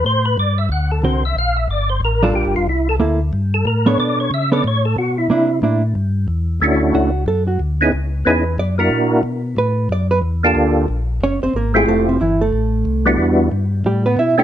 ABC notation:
X:1
M:4/4
L:1/8
Q:"Swing" 1/4=183
K:D
V:1 name="Tonewheel organ"
=c B d e f A c e | =f e d =c _B A G =F | E A z3 A _B c | d c e d c A F E- |
E2 z6 | [A,CDEF]3 z4 [B,C_E=E^G] | z2 [B,C_E=E^G] z2 [^A,DEF^A]3 | z6 z [_B,D=FGA]- |
[_B,D=FGA]2 z4 z [A,=CEFG]- | [A,=CE=FG]2 z4 z [G,B,DE^F]- | [G,B,DEF]2 z4 z [A,CDEF] |]
V:2 name="Hollow-body jazz guitar"
z6 [D,=CF_B] z | z4 z [G,D=F_B]3 | z2 [_B,EA] z4 [=B,DAc]- | [B,DAc]2 z [B,DAc] z4 |
[_B,DE] z [B,DE] z4 z | z2 F2 A F z2 | z2 B2 d ^A z2 | z2 B2 d B z2 |
z4 [Cc] [=C=c] [^A,^A] [^G,^G] | [A,A] [=C,=C] [E,E] [A,A]4- [A,A] | z4 [G,G] [B,B] [Ee] [Gg] |]
V:3 name="Tonewheel organ" clef=bass
A,,2 G,,2 D,,2 =C,,2 | _B,,,2 G,,,2 A,,,2 (3B,,, G,,, =F,,, | =C,,2 D,,2 G,,2 A,,2 | B,,2 C,2 A,,2 B,,2 |
=C,2 A,,2 G,,2 E,,2 | D,,2 C,,2 F,,2 D,,2 | C,,2 E,,2 F,,2 ^A,,2 | B,,2 A,,2 F,,2 E,,2 |
D,,2 _B,,,2 F,,, F,,, ^G,,,2 | =F,,,2 G,,,2 A,,,2 =C,,2 | E,,2 G,,2 A,,2 B,,2 |]